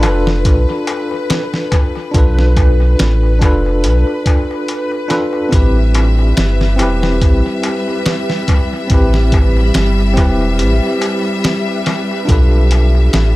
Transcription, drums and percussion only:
0.03 closed hi-hat medium
0.03 darbuka tek loud
0.26 snare soft
0.26 darbuka tek soft
0.45 kick loud
0.45 closed hi-hat medium
0.45 darbuka tek medium
0.69 darbuka tek soft
0.87 closed hi-hat medium
0.87 darbuka tek medium
1.11 darbuka tek soft
1.30 snare loud
1.30 closed hi-hat medium
1.30 darbuka tek soft
1.53 snare soft
1.53 darbuka tek soft
1.72 kick medium
1.72 closed hi-hat medium
1.72 darbuka tek medium
1.95 darbuka tek soft
2.14 kick loud
2.14 closed hi-hat medium
2.14 darbuka tek medium
2.38 snare soft
2.38 darbuka tek soft
2.57 kick medium
2.57 closed hi-hat medium
2.57 darbuka tek medium
2.80 darbuka tek soft
2.99 snare loud
2.99 closed hi-hat medium
2.99 darbuka tek soft
3.23 darbuka tek soft
3.41 kick medium
3.41 closed hi-hat medium
3.41 darbuka tek loud
3.66 darbuka tek soft
3.84 closed hi-hat medium
3.84 darbuka tek medium
4.07 darbuka tek soft
4.26 kick medium
4.26 closed hi-hat medium
4.26 darbuka tek medium
4.51 darbuka tek soft
4.68 closed hi-hat medium
4.68 darbuka tek medium
4.91 darbuka tek soft
5.10 snare soft
5.10 closed hi-hat medium
5.10 darbuka tek medium
5.33 darbuka tek soft
5.52 kick loud
5.52 closed hi-hat medium
5.52 darbuka tek soft
5.77 darbuka tek soft
5.95 closed hi-hat medium
5.95 darbuka tek medium
6.19 darbuka tek soft
6.37 snare loud
6.37 closed hi-hat medium
6.37 darbuka tek soft
6.61 snare soft
6.61 darbuka tek soft
6.79 closed hi-hat medium
6.79 darbuka tek medium
7.03 snare soft
7.03 darbuka tek soft
7.21 kick loud
7.21 closed hi-hat medium
7.21 darbuka tek soft
7.45 darbuka tek soft
7.63 closed hi-hat medium
7.63 darbuka tek medium
7.88 darbuka tek soft
8.06 snare loud
8.06 closed hi-hat medium
8.06 darbuka tek soft
8.30 snare soft
8.30 darbuka tek soft
8.48 kick medium
8.48 closed hi-hat medium
8.48 darbuka tek medium
8.73 darbuka tek soft
8.90 kick loud
8.90 closed hi-hat medium
8.90 darbuka tek medium
9.14 snare soft
9.14 darbuka tek soft
9.32 kick loud
9.32 closed hi-hat medium
9.32 darbuka tek medium
9.57 darbuka tek soft
9.74 snare loud
9.74 closed hi-hat medium
9.74 darbuka tek medium
10.00 darbuka tek soft
10.17 kick medium
10.17 closed hi-hat medium
10.17 darbuka tek medium
10.41 darbuka tek soft
10.59 closed hi-hat medium
10.59 darbuka tek soft
10.83 darbuka tek soft
11.01 closed hi-hat medium
11.01 darbuka tek medium
11.24 darbuka tek soft
11.44 snare loud
11.44 closed hi-hat medium
11.44 darbuka tek soft
11.68 darbuka tek soft
11.86 snare soft
11.86 closed hi-hat medium
11.86 darbuka tek medium
12.11 darbuka tek soft
12.28 kick loud
12.28 closed hi-hat medium
12.28 darbuka tek medium
12.53 darbuka tek soft
12.71 closed hi-hat medium
12.71 darbuka tek medium
12.95 darbuka tek soft
13.13 snare loud
13.13 closed hi-hat medium
13.13 darbuka tek soft

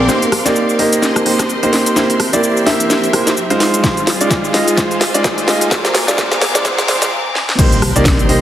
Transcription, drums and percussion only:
0.09 snare soft
0.09 cabasa medium
0.22 closed hi-hat medium
0.22 cabasa soft
0.32 cross-stick medium
0.32 open hi-hat loud
0.46 snare soft
0.46 closed hi-hat medium
0.46 cabasa medium
0.56 cabasa medium
0.69 cabasa soft
0.79 open hi-hat medium
0.93 closed hi-hat medium
0.93 cabasa medium
1.02 snare medium
1.02 cabasa medium
1.16 cross-stick medium
1.16 closed hi-hat soft
1.16 cabasa soft
1.26 open hi-hat loud
1.39 cross-stick medium
1.39 snare soft
1.39 closed hi-hat medium
1.39 cabasa medium
1.50 cabasa medium
1.63 closed hi-hat medium
1.63 cabasa soft
1.73 snare medium
1.73 open hi-hat medium
1.86 closed hi-hat medium
1.86 cabasa medium
1.96 snare medium
1.96 cabasa medium
2.10 closed hi-hat medium
2.10 cabasa soft
2.20 cross-stick medium
2.20 open hi-hat loud
2.33 closed hi-hat medium
2.33 cabasa medium
2.43 cabasa medium
2.57 cabasa soft
2.67 snare medium
2.67 open hi-hat loud
2.80 closed hi-hat medium
2.80 cabasa medium
2.90 snare medium
2.90 cabasa medium
3.04 closed hi-hat soft
3.04 cabasa soft
3.13 cross-stick medium
3.13 open hi-hat loud
3.27 snare medium
3.27 closed hi-hat medium
3.27 cabasa medium
3.37 cabasa medium
3.50 closed hi-hat medium
3.50 cabasa soft
3.60 snare medium
3.60 open hi-hat medium
3.74 closed hi-hat medium
3.74 cabasa medium
3.84 kick loud
3.84 snare medium
3.84 cabasa medium
3.97 closed hi-hat soft
3.97 cabasa soft
4.07 snare medium
4.07 open hi-hat loud
4.21 closed hi-hat medium
4.21 cabasa medium
4.31 kick loud
4.31 snare medium
4.31 cabasa medium
4.44 cabasa soft
4.54 snare medium
4.54 open hi-hat loud
4.68 closed hi-hat medium
4.68 cabasa medium
4.77 kick loud
4.77 snare medium
4.77 cabasa medium
4.91 closed hi-hat soft
4.91 cabasa soft
5.01 snare medium
5.01 open hi-hat loud
5.14 closed hi-hat medium
5.14 cabasa medium
5.24 kick loud
5.24 snare medium
5.24 cabasa medium
5.38 closed hi-hat soft
5.38 cabasa soft
5.48 snare medium
5.48 open hi-hat loud
5.61 closed hi-hat medium
5.61 cabasa medium
5.71 kick loud
5.71 snare medium
5.71 cabasa medium
5.85 snare medium
5.85 closed hi-hat soft
5.85 cabasa soft
5.95 snare loud
5.95 open hi-hat loud
6.08 snare medium
6.08 closed hi-hat medium
6.08 cabasa medium
6.18 kick loud
6.18 snare loud
6.18 cabasa medium
6.32 snare medium
6.32 cabasa soft
6.41 snare loud
6.41 open hi-hat medium
6.55 snare medium
6.55 closed hi-hat medium
6.55 cabasa medium
6.65 kick loud
6.65 snare loud
6.65 cabasa medium
6.78 snare medium
6.78 closed hi-hat soft
6.78 cabasa soft
6.88 snare loud
6.88 open hi-hat loud
7.02 snare medium
7.02 closed hi-hat medium
7.02 cabasa medium
7.35 snare medium
7.49 snare medium
7.59 kick loud
7.59 closed hi-hat loud
7.59 crash loud
7.59 cabasa medium
7.72 closed hi-hat soft
7.72 cabasa soft
7.82 cross-stick medium
7.82 open hi-hat loud
7.96 closed hi-hat soft
7.96 cabasa medium
8.05 kick loud
8.05 snare loud
8.05 closed hi-hat loud
8.05 cabasa medium
8.19 closed hi-hat soft
8.19 cabasa soft
8.29 open hi-hat loud

